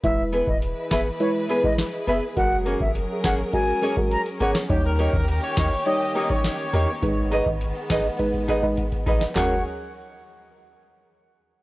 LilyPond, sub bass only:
\new Staff \with { instrumentName = "Sub bass" } { \clef bass \time 4/4 \key fis \mixolydian \tempo 4 = 103 e,,8. e,,8 r16 e,,16 r4. r16 fis,,16 r16 | fis,,8. fis,,8 r16 fis,,16 r4. r16 gis,,16 r16 | dis,8. dis,8 r16 dis,16 r4. r16 e,16 r16 | gis,,8. gis,,8 r16 gis,,16 r4. r16 ais,,16 r16 |
fis,,8 r2. r8 | }